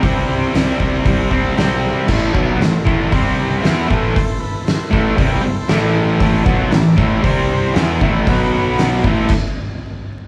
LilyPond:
<<
  \new Staff \with { instrumentName = "Transistor combo organ" } { \time 4/4 \key a \minor \tempo 4 = 116 <e' g' b'>8 <e' g' c''>8 <e' g' c''>8 <e' g' c''>8 <e' g' c''>8 <e' g' c'' a''>8 <e' g' c'' g''>8 <e' g' c'' e''>8 | <e' a' c''>8 <e' a' d''>8 <e' a' c''>8 <e' a' c''>8 <c' g' c''>8 <c' g' b'>8 <e' a' c''>8 <e' a' c''>8 | <e' a' c''>8 <e' a' b'>8 <e' a' c''>8 <e' a' c''>8 <e' a' b'>8 <e' a' c''>8 <e' a' d''>8 <e' a' c''>8 | <e' a' c''>8 <e' a' c''>8 <e' a' d''>8 <e' a' c''>8 <c' g' c''>8 <c' g' c''>8 <c' e' a'>8 <c' e' a'>8 |
<b fis' b'>8 <b fis' b'>8 <b fis' d''>8 <c' e' a'>8 r2 | }
  \new Staff \with { instrumentName = "Distorted electric guitar" } { \clef bass \time 4/4 \key a \minor <c g c'>4 <c g c'>8 <g c'>4 <g c'>8 <c g c'>4 | <a, e a>8 <b, fis b>8 <a, e>8 <a, e a>8 <c g c'>4 <e b e'>8 <a, e a>8 | r4. <a, e a>8 <c g c'>8 r8 <a, e a>4 | <a, e a>8 <b, fis b>8 <a, e>8 <a, e a>8 <c g c'>4 <e b e'>8 <a, e a>8 |
<b, fis b>4. <a, e a>8 r2 | }
  \new Staff \with { instrumentName = "Picked electric bass" } { \clef bass \time 4/4 \key a \minor c,8 c,8 c,8 c,8 c,8 c,8 b,,4 | a,,8 b,,8 a,,8 a,,8 c,4 e,8 a,,8 | r4. a,,8 c,8 r8 a,,4 | a,,8 b,,8 a,,8 a,,8 c,4 e,8 a,,8 |
b,,4. a,,8 r2 | }
  \new DrumStaff \with { instrumentName = "Drums" } \drummode { \time 4/4 <hho bd>4 <hho sn>8 bd8 <hho bd>8 bd8 <hho sn>4 | <cymc bd>8 bd8 <hho sn>8 bd8 <hho bd>4 <hho sn>8 bd8 | <hho bd>4 <hho sn>8 bd8 <hho bd>4 <hho sn>4 | <hho bd>8 bd8 <hho sn>8 bd8 <hho bd>4 <hho sn>8 bd8 |
<hho bd>4 <hho sn>8 bd8 <cymc bd>4 r4 | }
>>